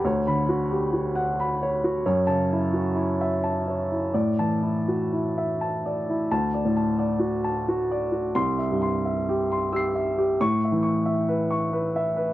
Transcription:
<<
  \new Staff \with { instrumentName = "Upright piano" } { \time 3/4 \key d \major \tempo 4 = 88 \tuplet 3/2 { cis''4 fis'8 g'8 fis'8 fis''8 b''8 cis''8 fis'8 } | \tuplet 3/2 { cis''4 e'8 fis'8 e'8 e''8 a''8 cis''8 e'8 } | \tuplet 3/2 { d''4 e'8 fis'8 e'8 e''8 a''8 d''8 e'8 } | \tuplet 3/2 { r8 d''8 a''8 d''8 fis'8 a''8 fis'8 d''8 fis'8 } |
\tuplet 3/2 { r8 e''8 c'''8 e''8 g'8 c'''8 g'8 e''8 g'8 } | \tuplet 3/2 { r8 e''8 cis'''8 e''8 b'8 cis'''8 b'8 e''8 b'8 } | }
  \new Staff \with { instrumentName = "Upright piano" } { \clef bass \time 3/4 \key d \major \tuplet 3/2 { d,8 <d b''>4 } r2 | \tuplet 3/2 { fis,8 <cis a''>4 } r2 | \tuplet 3/2 { a,8 <e a''>4 } r2 | <d, a''>8 a,4 r4. |
<c, c'''>8 g,4 r8 <e''' c''''>4 | <a, cis'''>8 e4 r4. | }
>>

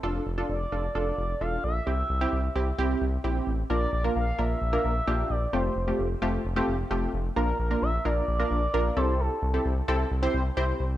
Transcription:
<<
  \new Staff \with { instrumentName = "Analog synth lead" } { \time 4/4 \key f \major \tempo 4 = 131 r4 d''2 f''8 e''8~ | e''2. r4 | d''8 d''8 f''8 e''2 d''8 | c''4 r2. |
bes'8 bes'8 e''8 d''2 c''8 | a'4 r2. | }
  \new Staff \with { instrumentName = "Analog polysynth" } { \time 4/4 \key f \major <d' f' a'>8 r16 <d' f' a'>8 r16 <d' f' a'>16 r16 <d' f' a'>8 r8 <d' f' a'>8 r8 | <c' e' g'>8 r16 <c' e' g'>8 r16 <c' e' g'>16 r16 <c' e' g'>8 r8 <c' e' g'>8 r8 | <bes d' f' bes'>8 r16 <bes d' f' bes'>8 r16 <bes d' f' bes'>8 r16 <bes d' f' bes'>8 r16 <bes d' f' g'>8 r8 | <a c' f' g'>8 r16 <a c' f' g'>8 r16 <a c' f' g'>8 r16 <a c' f' g'>8 r16 <a c' f' g'>8 r8 |
<bes d' f' bes'>8 r16 <bes d' f' bes'>8 r16 <bes d' f' bes'>8 r16 <bes d' f' bes'>8 r16 <bes d' f' bes'>8 <c' e' g' a'>8~ | <c' e' g' a'>8 r16 <c' e' g' a'>8 r16 <c' e' g' a'>8 r16 <c' e' g' c''>8 r16 <c' e' g' c''>8 r8 | }
  \new Staff \with { instrumentName = "Analog synth bass" } { \clef bass \time 4/4 \key f \major f,,8 f,,8 f,,8 f,,8 f,,8 f,,8 e,,8 bes,,8 | c,8 c,8 c,8 c,8 c,8 c,8 bes,,8 a,,8 | bes,,8 bes,,8 bes,,8 bes,,8 bes,,8 bes,,8 bes,,8 bes,,8 | f,,8 f,,8 f,,8 f,,8 f,,8 f,,8 f,,8 f,,8 |
bes,,8 bes,,8 bes,,8 bes,,8 bes,,8 bes,,8 bes,,8 c,8~ | c,8 c,8 c,8 c,8 c,8 c,8 c,8 c,8 | }
>>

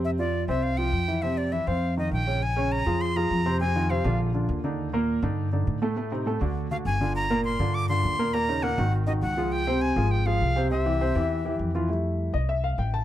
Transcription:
<<
  \new Staff \with { instrumentName = "Flute" } { \time 4/4 \key bes \lydian \tempo 4 = 202 e''8 d''4 e''8 f''8 g''4. | e''8 d''8 e''8 f''4 ees''8 g''4 | aes''4 bes''4 c'''8 bes''4. | aes''4 f''4 r2 |
r1 | r2 r8 f''8 aes''4 | bes''4 c'''4 d'''8 c'''4. | bes''4 ges''4 r8 ees''8 ges''4 |
g''4 aes''4 g''8 f''4. | e''2. r4 | r1 | }
  \new Staff \with { instrumentName = "Grand piano" } { \time 4/4 \key bes \lydian <c c'>8 <f f'>4 <c' c''>4 <f f'>4 <e e'>8 | <c c'>4 <e e'>8 <c' c''>4 <ees ees'>4 <des des'>8 | r8 <des des' des''>4 <f f' aes'>4 <f f' aes'>4 <c c' c''>8 | <c c' c''>8 <ees ees' f'>8 <c c' c''>8 <d d' f'>4 <d d' f'>4 <d d' ees'>8~ |
<d d' ees'>8 <bes, bes bes'>4 <d d' ees'>4 <d d' ees'>4 <a, a a'>8 | <a, a a'>8 <c c' ees'>8 <a, a a'>8 <d d' ges'>4 <d d' ges'>4 <d d' f'>8~ | <d d' f'>8 <bes, bes bes'>4 <d d' f'>4 <d d' f'>4 <bes, bes bes'>8 | <bes, bes bes'>8 <des des' ees'>8 <bes, bes bes'>8 <ees ees' ges'>4 <ees ees' ges'>4 <f f' aes'>8~ |
<f f' aes'>8 <c c' c''>4 <f f' aes'>4 <f f' aes'>4 <c c' c''>8 | <c c' c''>8 <e e' g'>8 <c c' c''>8 <e e' g'>4 <e e' g'>4 <e e' f'>8 | <g a e'>4. ees''8 e''8 f''8 g''8 a''8 | }
  \new Staff \with { instrumentName = "Upright bass" } { \clef bass \time 4/4 \key bes \lydian f,4. c,4. f,4~ | f,4. f,4. bes,,4~ | bes,,4. f,4. f,4~ | f,4. bes,,4. ees,4~ |
ees,4. g,4. a,4~ | a,4. d,4. g,,4~ | g,,4. g,4. ees,4~ | ees,4. aes,,4. des,4~ |
des,4. aes,,4. c,4~ | c,4. e,4. f,4~ | f,4. c,4. a,,4 | }
>>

